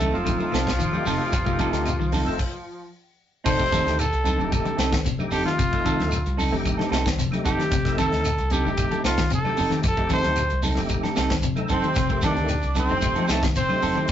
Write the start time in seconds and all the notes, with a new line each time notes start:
Already playing: C2 A3 A4
0.00 C4 D#4 A4, closed hi-hat, shekere
0.11 F1 A3 C4 D#4 F4 A4, shekere
0.15 F3
0.25 D3, kick, closed hi-hat, high conga, claves, shekere
0.40 high conga, shekere
0.52 C2 C3 C4 D#4 A4, snare, closed hi-hat, claves, shekere
0.67 kick, snare, shekere
0.79 F1 D#3, closed hi-hat, shekere
0.91 A3 C4 D#4 G4, high conga, claves, shekere
1.05 F1 C3 C4 D#4 A4, open hi-hat, low conga, shekere
1.17 A3 C4 D#4 G4, shekere
1.32 F1, kick, closed hi-hat, claves, shekere
1.45 C3 A3 C4 D#4 G4, kick, shekere
1.59 C4 D#4 A4, kick, closed hi-hat, high conga, shekere
1.72 D2 D3 D#4 A4, snare, closed hi-hat, shekere
1.86 closed hi-hat, claves, shekere
2.00 C2 D#3, shekere
2.12 C4 D#4 A4, open hi-hat, high conga, low conga, shekere
2.25 F1 A3 C4 D#4 A4, shekere
2.39 kick, crash
3.44 F1 C3 C4 D#4 A4 C5, kick, crash, claves, shekere
3.58 A3 C4 D#4 G4, kick, shekere
3.71 D#3 C4 D#4 A4, kick, snare, closed hi-hat, high conga, low conga, shekere
3.85 D2 D#4 A4, snare, closed hi-hat, shekere
3.99 A4, closed hi-hat, claves, shekere
4.13 C2, closed hi-hat, shekere
4.24 C4 D#4 A4, closed hi-hat, high conga, low conga, shekere
4.38 F1 D3 A3 C4 D#4 G4, shekere
4.52 A4, kick, closed hi-hat, claves, shekere
4.65 D3, closed hi-hat, high conga, shekere
4.77 C2 C4 D#4 A4, snare, closed hi-hat, claves, shekere
4.92 D#3, kick, snare, closed hi-hat, shekere
5.05 F1 C3, closed hi-hat, low conga, shekere
5.18 A3 C4 D#4 G4, high conga, claves, shekere
5.31 F1 C4 D#4 G4 A4, open hi-hat, high conga, low conga, shekere
5.44 D#3 A3 C4 D#4 F4 G4, snare, closed hi-hat, shekere
5.58 F1 C3, kick, closed hi-hat, claves, shekere
5.71 A3 C4 D#4 A4, kick, shekere
5.85 D#3 C4 D#4 A4, kick, closed hi-hat, high conga, low conga, shekere
5.99 D2, snare, closed hi-hat, high conga, shekere
6.11 closed hi-hat, claves, shekere
6.26 C2, closed hi-hat, shekere
6.37 C4 D#4 A4, open hi-hat, high conga, low conga, shekere
6.51 F1 D3 A3 C4 D#4 G4, shekere
6.65 kick, closed hi-hat, high conga, claves, shekere
6.78 D3 D#4 A4, snare, high conga, shekere
6.91 C2 C4 D#4 A4, snare, closed hi-hat, claves, shekere
7.06 D#3, kick, snare, closed hi-hat, shekere
7.19 F1 C3, closed hi-hat, shekere
7.31 A3 C4 D#4 G4, closed hi-hat, high conga, claves, shekere
7.44 F1 C4 D#4 G4 A4, kick, closed hi-hat, high conga, low conga, shekere
7.57 D#3 A3 C4 D#4 G4, snare, closed hi-hat, shekere
7.71 F1 C3, kick, snare, closed hi-hat, claves, shekere
7.85 A3 C4 D#4 A4, kick, snare, shekere
7.97 D#3 C4 D#4 A4, kick, closed hi-hat, high conga, low conga, shekere
8.11 D2 D#4 A4, snare, closed hi-hat, shekere
8.25 closed hi-hat, claves, shekere
8.38 C2, closed hi-hat, shekere
8.50 C4 D#4 G4 A4, closed hi-hat, high conga, low conga, shekere
8.64 F1 D3 A3 C4 D#4 G4, shekere
8.77 kick, closed hi-hat, claves, shekere
8.91 D3 A4, muted clean electric guitar stroke, closed hi-hat, high conga, shekere
9.04 C2 C4 D#4 F4 A4, snare, closed hi-hat, claves, shekere
9.17 D#3, kick, snare, closed hi-hat, shekere
9.30 F1 C3 A4, closed hi-hat, shekere
9.44 A3 C4 D#4 G4, high conga, claves, shekere
9.57 F1 C4 D#4 A4, open hi-hat, low conga, shekere
9.70 D#3 A3 C4 D#4 G4, snare, closed hi-hat, shekere
9.83 F1, muted clean electric guitar stroke, kick, closed hi-hat, claves, shekere
9.88 A4
9.96 A3 C4 D#4 G4, kick, shekere
10.09 D#3 C4 D#4 A4, kick, closed hi-hat, high conga, shekere
10.13 C5
10.23 D2 D#4 A4, snare, closed hi-hat, high conga, shekere
10.36 closed hi-hat, claves, shekere
10.50 C2, closed hi-hat, shekere
10.62 C4 D#4 A4, open hi-hat, high conga, low conga, shekere
10.75 F1 D3 A3 C4 D#4 G4, snare, shekere
10.89 kick, closed hi-hat, claves, shekere
11.03 D3 D#4 A4, snare, high conga, shekere
11.16 C2 C4 D#4 A4, snare, closed hi-hat, claves, shekere
11.29 D#3, kick, snare, closed hi-hat, shekere
11.42 F1 C3, closed hi-hat, shekere
11.56 A3 C4 D#4 A4, closed hi-hat, high conga, claves, shekere
11.68 F1 C4 D#4 A4 C5, kick, closed hi-hat, high conga, low conga, shekere
11.82 D#3 A3 C4 D#4 G4, closed hi-hat, shekere
11.95 F1 C3, kick, snare, closed hi-hat, claves, shekere
12.09 D#3 A3 C4 G4, kick, shekere
12.22 D#3 C4 D4 D#4 A4 D5, kick, snare, closed hi-hat, high conga, low conga, shekere
12.36 D2 D#4 A4, closed hi-hat, shekere
12.48 closed hi-hat, claves, shekere
12.62 C2, closed hi-hat, shekere
12.75 C4 D#4 A4 C5, closed hi-hat, high conga, low conga, shekere
12.89 F1 D3 A3 C4 D#4 G4, shekere
13.01 kick, closed hi-hat, claves, shekere
13.15 F3 D#4 A4, closed hi-hat, high conga, shekere
13.28 C2 A3 C4 D#4 A4, snare, closed hi-hat, claves, shekere
13.42 D#3, kick, snare, closed hi-hat, shekere
13.56 F1 C3 C4 C5, closed hi-hat, shekere
13.68 A3 C4 D#4 G4, high conga, claves, shekere
13.82 F1 C4 D#4 A4, open hi-hat, high conga, low conga, shekere
13.95 D#3 A3 C4 D#4 G4, closed hi-hat, shekere
14.08 closed hi-hat